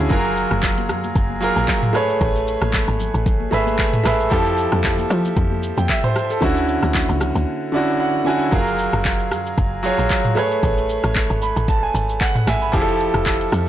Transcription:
Already playing: D3 C#4 E4 F4 F#4 G#4
0.09 F#1 F#3 F4 G#4 A#4, kick, shaker
0.25 shaker
0.37 shaker
0.51 F#1, cross-stick, high conga, shaker
0.63 kick, clap, low conga, shaker
0.77 high conga, shaker
0.89 F#2, cross-stick, low conga, shaker
1.04 high conga, shaker
1.15 F#1, kick, low conga, shaker
1.30 high conga
1.40 F#3 F4 G#4 A#4, shaker
1.56 A#1, high conga, shaker
1.68 kick, clap, low conga, shaker
1.83 mid tom, shaker
1.93 A3 G#4 B4 C#5, cross-stick, shaker
2.09 shaker
2.21 A1, kick, shaker
2.36 shaker
2.47 shaker
2.62 A1, cross-stick, high conga, shaker
2.73 kick, clap, low conga, shaker
2.88 G#1, high conga, shaker
3.00 low conga, shaker
3.14 A1, high conga, shaker
3.26 kick, low conga, shaker
3.40 high conga
3.51 G#1 A3 G#4 B4 E5, shaker
3.67 high conga, shaker
3.79 kick, clap, low conga, shaker
3.93 mid tom, shaker
4.04 A1 A3 G#4 B4 E5, cross-stick, snare, shaker
4.20 shaker
4.30 F2 F3 E4 G4 A4, kick, shaker
4.46 shaker
4.58 shaker
4.72 F2, cross-stick, high conga, shaker
4.84 kick, clap, low conga, shaker
4.98 high conga, shaker
5.10 F3, cross-stick, low conga, shaker
5.25 high conga, shaker
5.37 F2, kick, low conga, shaker
5.51 high conga
5.63 shaker
5.77 F2 G5, high conga, shaker
5.89 E5, kick, clap, low conga, shaker
6.04 C5, mid tom, shaker
6.16 cross-stick, shaker
6.30 A4, shaker
6.41 D2 D3 C#4 E4 F#4, kick, shaker
6.57 shaker
6.68 shaker
6.83 D2, cross-stick, high conga, shaker
6.94 kick, clap, low conga, shaker
7.09 C#2, high conga, shaker
7.21 cross-stick, low conga, shaker
7.35 D2, high conga, shaker
7.72 D3 C#4 E4 F#4 D5
8.00 F#5
8.25 D3 C#4 E4 F#4 G#5
8.51 F#1 F#3 F4 G#4 A#4, kick, shaker
8.67 shaker
8.79 shaker
8.93 F#1, cross-stick, shaker
9.05 kick, clap, shaker
9.20 shaker
9.31 F#2, cross-stick, shaker
9.46 shaker
9.58 F#1, kick, shaker
9.83 F#3 F4 G#4 C#5, shaker
9.99 A#1, shaker
10.10 kick, clap, shaker
10.25 mid tom, shaker
10.35 A3 G#4 B4 C#5, cross-stick, shaker
10.51 shaker
10.63 A1, kick, shaker
10.78 shaker
10.89 shaker
11.04 A1, cross-stick, shaker
11.16 kick, clap, shaker
11.30 G#1, shaker
11.42 B5, shaker
11.56 A1, shaker
11.68 A5, kick, shaker
11.83 G#5
11.95 G#1, shaker
12.09 shaker
12.21 F#5, kick, clap, shaker
12.35 F#5, mid tom, shaker
12.47 A1 E5 G#5, cross-stick, snare, shaker
12.62 B5, shaker
12.72 F1 F3 E4 G4 G#4, kick, shaker
12.82 A4
12.88 shaker
13.00 shaker
13.14 F1, cross-stick, shaker
13.26 kick, clap, shaker
13.41 shaker
13.52 F2, cross-stick, shaker

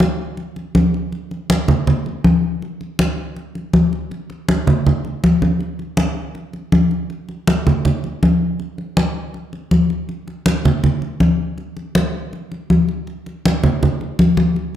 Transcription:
0.00 high conga
0.37 high conga
0.56 high conga
0.75 high conga
0.94 high conga
1.12 high conga
1.31 high conga
1.50 high conga
1.68 high conga, low conga
1.87 high conga, low conga
2.06 high conga
2.24 high conga
2.62 high conga
2.81 high conga
2.99 high conga
3.37 high conga
3.55 high conga
3.73 high conga
3.93 high conga
4.11 high conga
4.30 high conga
4.49 high conga
4.67 high conga, low conga
4.87 high conga, low conga
5.05 high conga
5.24 high conga
5.42 high conga
5.61 high conga
5.79 high conga
5.97 high conga
6.35 high conga
6.53 high conga
6.72 high conga
6.91 high conga
7.10 high conga
7.29 high conga
7.47 high conga
7.67 high conga, low conga
7.85 high conga, low conga
8.04 high conga
8.23 high conga
8.60 high conga
8.78 high conga
8.97 high conga
9.34 high conga
9.53 high conga
9.71 high conga
9.90 high conga
10.09 high conga
10.28 high conga
10.46 high conga
10.65 high conga, low conga
10.84 high conga, low conga
11.02 high conga
11.20 high conga
11.58 high conga
11.77 high conga
11.95 high conga
12.33 high conga
12.52 high conga
12.70 high conga
12.89 high conga
13.07 high conga
13.26 high conga
13.46 high conga
13.64 high conga, low conga
13.83 high conga, low conga
14.01 high conga
14.19 high conga
14.37 high conga
14.56 high conga

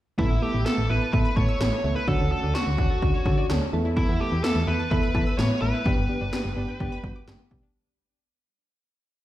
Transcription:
0.19 A1 E3 B3 E4 A4, kick
0.30 A1 B3
0.42 A3 B3 E4 G4 A4
0.54 A1 E4
0.66 B3 E4 A4, snare
0.78 A1
0.90 A1 B3 E4 A4 B4
1.01 A5
1.13 A1 B3 E4 A4 B4 E5, kick
1.25 B5
1.37 A2 B3 E4 A4 C#5 A5, kick
1.49 E6
1.60 A1 E3 B3 E4 A4, snare
1.72 B3
1.84 C#2 A3 B3 E4 A4
1.96 E4 B4
2.08 D2 F#3 C#4 D4 F#4 A4, kick
2.20 D2 C#4
2.31 A3 C#4 D4 F#4 A4
2.43 D2 D4
2.55 C#4 D4 F#4, snare
2.67 D2
2.78 D2 C#4 D4 F#4, kick
2.90 A4
3.02 D2 C#4 D4 F#4, kick
3.14 C#5
3.26 D3 C#4 D4 F#4 A4, kick
3.38 D5
3.49 D2 F#3 C#4 D4 A4, snare
3.61 C#4
3.73 E2 A3 B3 E4 A4
3.85 E4
3.97 E3 E4, kick
4.08 E2 B3
4.20 A3 B3 E4 G4 A4
4.32 E2 E4
4.44 B3 E4 A4, snare
4.56 E2
4.67 E2 B3 E4 A4 B4
4.79 A5
4.91 E2 B3 E4 A4 B4 E5, kick
5.03 B5
5.15 E3 B3 E4 A4 A5, kick
5.27 E6
5.38 A2 E3 B3 E4 B4 C#5, snare
5.50 B3
5.62 A1 A3 B3 E4 B4
5.74 E4
5.86 G1 D3 B3 D4 G4, kick
5.97 G1 B3
6.09 G3 B3 D4 G4
6.21 G1 D4
6.33 B3 D4 G4, snare
6.45 G1
6.57 G1 B3 D4 G4
6.68 G5
6.80 G1 B3 D4 G4 D5, kick
6.92 B5
7.04 G2 B3 D4 F#4 G5, kick
7.16 D6
7.27 G1 D3 B3 D4 G4, snare
7.39 B3
7.51 B1 G3 B3 D4 G4, kick
7.63 D4

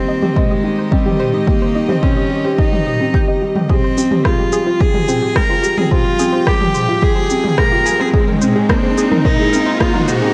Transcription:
Already playing: D#3 G3 A#3 C4 D#4 C5
0.00 G4
0.08 D#5
0.20 G4 D#5, mid tom
0.36 G#3 C5 D#5, kick
0.50 G3 D#5
0.63 D#4 G4
0.79 C5
0.91 G3 C4 D#5, kick
1.05 G4, mid tom
1.19 G3 C5
1.33 G#3 D#4 D#5
1.47 G3 A#3 G4, kick
1.62 C5
1.75 D#4 D#5
1.89 C4 G4 C5, mid tom
2.03 C4 C#4 C5, kick
2.16 G3 D#5
2.31 G4
2.44 G4 C5
2.59 D#4 D#5, kick
2.72 G3 G4, mid tom
2.85 G4 D#6
3.00 C4 G4
3.14 G4 G6, kick
3.27 G4 D#5
3.41 G3 G4
3.55 G3 G4, mid tom
3.69 F3 G3 C4 G#4, kick, riser
3.84 C5
3.97 C4 G4, shaker
4.11 G4 G#4, mid tom
4.25 G#3 F4 C5, kick, cross-stick
4.38 G3 G4
4.52 G#4, shaker
4.66 F4 C5
4.80 G4 G#4, kick
4.90 G3 G5, mid tom
4.95 G#4
5.08 C4 C5, shaker
5.22 G4
5.36 G#3 G#4 A#4, kick, cross-stick
5.49 F4 C5
5.63 G3 G4, shaker
5.77 C4 G#4, mid tom
5.91 G3 F4 C5, kick
6.05 G4
6.19 C4 G#4, shaker
6.33 G4 C5
6.47 G#3 G4, kick, cross-stick
6.60 G3 G#4, mid tom
6.74 C5, shaker
6.88 F4 G4
7.02 G#4, kick
7.16 G3 C5
7.30 C4 G4, shaker
7.44 G#4, mid tom
7.58 G#3 A#4 C5, kick, cross-stick
7.72 F4 G4
7.86 G3 G#4, shaker
8.00 C4 G#4 C5
8.13 G#3 G#4, kick
8.28 D#4 A#4, mid tom
8.42 C4 C5, shaker
8.54 G#4 A#4
8.69 A#3 C4 A#4, kick, cross-stick
8.83 G#3 C5
8.98 G#4, shaker
9.11 D#4 A#4, mid tom
9.25 D#4 A#4 C5, kick
9.39 G#3 G#4
9.53 C4 A#4, shaker
9.66 C5
9.80 A#3 F4 G#4, kick, cross-stick
9.94 D#4 A#4, mid tom
10.08 G#3 D#4 C5, shaker
10.13 C5
10.22 C4 G#4

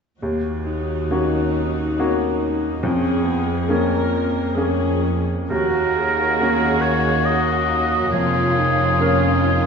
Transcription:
0.21 D#2 A#3 F#4
0.65 D#4
1.11 A#3 C#4 F#4
1.99 A#3 C#4 F#4
2.83 F2 C#4 G#4
3.25 B3
3.69 A#3 C#4 G#4 A#4
4.57 A#3 C#4 G#4
5.50 D#2 A#3 C#4 F#4 A#4
5.96 G#4
6.41 A#3 C#4 F#4
6.81 C#5
7.25 F#4 D#5
8.11 F1 F2 F4 G#4
8.57 D#4
9.00 A#3 C#4 A#4
9.45 D#4

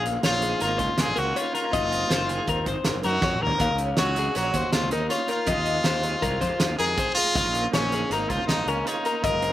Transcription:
Already playing: A#1 C#3 F3 F4 F5
0.06 A#3, closed hi-hat
0.23 A#1 F3 F4 C#5, snare, closed hi-hat
0.42 D#4 G#4, closed hi-hat
0.60 G#1 A#3 F4 A#4, closed hi-hat
0.78 C#2 G#2 C5, kick, closed hi-hat
0.98 C#2 F4 G#4, snare, closed hi-hat
1.08 A#1
1.16 C#2 C4 F#4 A#4, closed hi-hat
1.25 D#4
1.36 C#3 D#4 F4 C#5, closed hi-hat
1.54 G#3 F4 A#4, closed hi-hat
1.64 A#3
1.72 G#1 G#2 D#4 D#5, kick, closed hi-hat
1.82 F#1
1.92 C4, closed hi-hat
2.10 F#1 D#3 C5, snare, closed hi-hat
2.28 C4 G#4, closed hi-hat
2.38 D#4
2.47 D#2 C4 A#4, kick, closed hi-hat
2.66 G#1 D#3 C5, kick, closed hi-hat
2.84 G#1 A#4, snare, closed hi-hat
2.95 F#1
3.03 F#2 D#4 F#4 A#4, closed hi-hat
3.21 F2 G#2 C4 C#5, kick, snare
3.32 D#4, mid tom
3.42 D#2 C4 A#4
3.47 floor tom
3.59 D#2 D#3 D#4 F5, kick, closed hi-hat
3.71 C#2
3.78 C#4, closed hi-hat
3.97 C#2 F#3 F#4 C#5, snare, closed hi-hat
4.16 D#4 G#4, closed hi-hat
4.35 A#1 C#4 F#4 A#4, closed hi-hat
4.53 D#2 A#2 C5, kick, closed hi-hat
4.73 D#2 D#4 F4, snare, closed hi-hat
4.83 C#2
4.91 D#2 C4 D#4 A#4, closed hi-hat
5.00 D#4
5.09 C#3 F4 C#5, closed hi-hat
5.28 D#3 F4 A#4, closed hi-hat
5.47 F2 D#4 D#5, kick, closed hi-hat
5.57 D#2
5.66 G#3, closed hi-hat
5.84 D#2 F3 C5, snare, closed hi-hat
6.03 D#4 G#4, closed hi-hat
6.22 C2 G#3 A#4, kick, closed hi-hat
6.40 F2 C3 C5, kick, closed hi-hat
6.59 F2 D#4, snare, closed hi-hat
6.70 D#2
6.78 F2 D#4 G#4 A#4, closed hi-hat
6.97 F2 D#4 C5, kick, closed hi-hat
7.14 G#3 F4 G#4, closed hi-hat
7.35 C#2 C#3 D#4 F5, kick, closed hi-hat
7.45 A#1
7.55 A#3, closed hi-hat
7.72 A#1 F3 C#4 C#5, snare, closed hi-hat
7.92 D#4 G#4, closed hi-hat
8.10 G#1 A#3 D#4 A#4, closed hi-hat
8.29 C#2 G#2 F4 C5, kick, closed hi-hat
8.47 C#2 D#4 F4, snare, closed hi-hat
8.58 A#1
8.66 C#2 C#4 D#4 A#4, closed hi-hat
8.85 C#3 D#4 F4 C#5, closed hi-hat
9.05 A#3 A#4, closed hi-hat
9.23 G#1 G#2 F4 A#4 D#5, kick, closed hi-hat
9.33 F#1
9.42 C4, closed hi-hat

